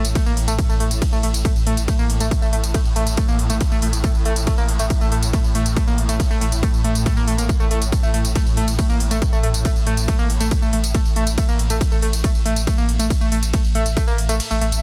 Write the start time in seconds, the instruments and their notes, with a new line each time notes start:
Already playing: synth drone A2
0.05 sub bass A1, closed hi-hat, tambourine
0.15 analog synth lead A3, kick, closed hi-hat, ride, tambourine
0.26 sub bass A1, analog synth lead A#3, tambourine
0.37 sub bass A1, open hi-hat
0.48 sub bass A1, analog synth lead A3, closed hi-hat, tambourine
0.59 kick, closed hi-hat, ride, tambourine
0.69 sub bass A1, analog synth lead A3, tambourine
0.80 sub bass A1, analog synth lead A3, open hi-hat
0.91 sub bass A1, closed hi-hat, tambourine
1.02 synth drone A2, kick, closed hi-hat, ride, tambourine
1.12 sub bass A1, analog synth lead A3, tambourine
1.23 sub bass A1, analog synth lead A3, open hi-hat
1.34 sub bass A1, closed hi-hat, tambourine
1.45 analog synth lead A3, kick, closed hi-hat, ride, tambourine
1.55 sub bass A1, tambourine
1.66 sub bass A1, analog synth lead A3, open hi-hat
1.77 sub bass A1, closed hi-hat, tambourine
1.88 analog synth lead A3, kick, closed hi-hat, ride, tambourine
1.99 sub bass A1, analog synth lead A#3, tambourine
2.09 sub bass A1, open hi-hat
2.20 sub bass A1, analog synth lead A3, closed hi-hat, tambourine
2.31 kick, closed hi-hat, ride, tambourine
2.42 sub bass A1, analog synth lead A3, tambourine
2.53 sub bass A1, analog synth lead A3, open hi-hat
2.63 sub bass A1, closed hi-hat, tambourine
2.74 analog synth lead A3, kick, closed hi-hat, ride, tambourine
2.85 sub bass A1, tambourine
2.96 sub bass A1, analog synth lead A3, open hi-hat
3.07 sub bass A1, closed hi-hat, tambourine
3.17 analog synth lead A3, kick, closed hi-hat, ride, tambourine
3.28 sub bass A1, analog synth lead A#3, tambourine
3.39 sub bass A1, open hi-hat
3.50 sub bass A1, analog synth lead A3, closed hi-hat, tambourine
3.61 kick, closed hi-hat, ride, tambourine
3.71 sub bass A1, analog synth lead A3, tambourine
3.82 sub bass A1, analog synth lead A3, open hi-hat
3.93 sub bass A1, closed hi-hat, tambourine
4.04 analog synth lead A3, kick, closed hi-hat, ride, tambourine
4.15 sub bass A1, tambourine
4.25 sub bass A1, analog synth lead A3, open hi-hat
4.36 sub bass A1, closed hi-hat, tambourine
4.47 analog synth lead A3, kick, closed hi-hat, ride, tambourine
4.58 sub bass A1, analog synth lead A#3, tambourine
4.68 sub bass A1, open hi-hat
4.79 sub bass A1, analog synth lead A3, closed hi-hat, tambourine
4.90 kick, closed hi-hat, ride, tambourine
5.01 sub bass A1, analog synth lead A3, tambourine
5.12 sub bass A1, analog synth lead A3, open hi-hat
5.23 sub bass A1, closed hi-hat, tambourine
5.33 analog synth lead A3, kick, closed hi-hat, ride, tambourine
5.44 sub bass A1, tambourine
5.55 sub bass A1, analog synth lead A3, open hi-hat
5.66 sub bass A1, closed hi-hat, tambourine
5.77 analog synth lead A3, kick, closed hi-hat, ride, tambourine
5.87 sub bass A1, analog synth lead A#3, tambourine
5.98 sub bass A1, open hi-hat
6.09 sub bass A1, analog synth lead A3, closed hi-hat, tambourine
6.20 kick, closed hi-hat, ride, tambourine
6.30 sub bass A1, analog synth lead A3, tambourine
6.41 sub bass A1, analog synth lead A3, open hi-hat
6.52 sub bass A1, closed hi-hat, tambourine
6.63 analog synth lead A3, kick, closed hi-hat, ride, tambourine
6.74 sub bass A1, tambourine
6.84 sub bass A1, analog synth lead A3, open hi-hat
6.95 sub bass A1, closed hi-hat, tambourine
7.06 analog synth lead A3, kick, closed hi-hat, ride
7.17 sub bass A1, analog synth lead A#3, tambourine
7.28 sub bass A1, analog synth lead A3, open hi-hat
7.38 sub bass A1, analog synth lead A#3, closed hi-hat, tambourine
7.49 kick, closed hi-hat, ride, tambourine
7.60 sub bass A1, analog synth lead A3, tambourine
7.71 sub bass A1, analog synth lead A3, open hi-hat
7.82 sub bass A1, closed hi-hat, tambourine
7.92 kick, closed hi-hat, ride, tambourine
8.03 sub bass A1, analog synth lead A3, tambourine
8.14 sub bass A1, analog synth lead A3, open hi-hat
8.25 sub bass A1, closed hi-hat, tambourine
8.35 analog synth lead A3, kick, closed hi-hat, ride, tambourine
8.46 sub bass A1, tambourine
8.57 sub bass A1, analog synth lead A3, open hi-hat
8.68 sub bass A1, closed hi-hat, tambourine
8.79 analog synth lead A3, kick, closed hi-hat, ride, tambourine
8.89 sub bass A1, analog synth lead A#3, tambourine
9.00 sub bass A1, open hi-hat
9.11 sub bass A1, analog synth lead A3, closed hi-hat, tambourine
9.22 kick, closed hi-hat, ride, tambourine
9.32 sub bass A1, analog synth lead A3, tambourine
9.43 sub bass A1, analog synth lead A3, open hi-hat
9.54 sub bass A1, closed hi-hat, tambourine
9.65 analog synth lead A3, kick, closed hi-hat, ride, tambourine
9.76 sub bass A1, tambourine
9.86 sub bass A1, analog synth lead A3, open hi-hat
9.97 sub bass A1, closed hi-hat, tambourine
10.08 analog synth lead A3, kick, closed hi-hat, ride, tambourine
10.19 sub bass A1, analog synth lead A#3, tambourine
10.30 sub bass A1, open hi-hat
10.40 sub bass A1, analog synth lead A3, closed hi-hat, tambourine
10.51 kick, closed hi-hat, ride, tambourine
10.62 sub bass A1, analog synth lead A3, tambourine
10.73 sub bass A1, analog synth lead A3, open hi-hat
10.84 sub bass A1, closed hi-hat, tambourine
10.94 analog synth lead A3, kick, closed hi-hat, ride, tambourine
11.05 sub bass A1, tambourine
11.16 sub bass A1, analog synth lead A3, open hi-hat
11.27 sub bass A1, closed hi-hat, tambourine
11.38 analog synth lead A3, kick, closed hi-hat, ride, tambourine
11.48 sub bass A1, analog synth lead A#3, tambourine
11.59 sub bass A1, open hi-hat
11.70 sub bass A1, analog synth lead A3, closed hi-hat, tambourine
11.81 kick, closed hi-hat, ride, tambourine
11.92 sub bass A1, analog synth lead A3, tambourine
12.02 sub bass A1, analog synth lead A3, open hi-hat
12.13 sub bass A1, closed hi-hat, tambourine
12.24 analog synth lead A3, kick, closed hi-hat, ride, tambourine
12.35 sub bass A1, tambourine
12.45 sub bass A1, analog synth lead A3, open hi-hat
12.56 sub bass A1, closed hi-hat, tambourine
12.67 analog synth lead A3, kick, closed hi-hat, ride, tambourine
12.78 sub bass A1, analog synth lead A#3, tambourine
12.89 sub bass A1, open hi-hat
12.99 sub bass A1, analog synth lead A3, closed hi-hat, tambourine
13.10 kick, closed hi-hat, ride, tambourine
13.21 sub bass A1, analog synth lead A3, tambourine
13.32 sub bass A1, analog synth lead A3, open hi-hat
13.43 sub bass A1, closed hi-hat, tambourine
13.53 analog synth lead A3, kick, closed hi-hat, ride, tambourine
13.64 sub bass A1, tambourine
13.75 sub bass A1, analog synth lead A3, open hi-hat
13.86 sub bass A1, closed hi-hat, tambourine
13.96 analog synth lead A3, kick, closed hi-hat, ride, tambourine
14.07 sub bass A1, analog synth lead A#3, tambourine
14.18 sub bass A1, open hi-hat
14.29 sub bass A1, analog synth lead A3, closed hi-hat, tambourine
14.40 closed hi-hat, ride, tambourine
14.51 sub bass A1, analog synth lead A3, tambourine
14.61 sub bass A1, analog synth lead A3, open hi-hat
14.72 sub bass A1, closed hi-hat, tambourine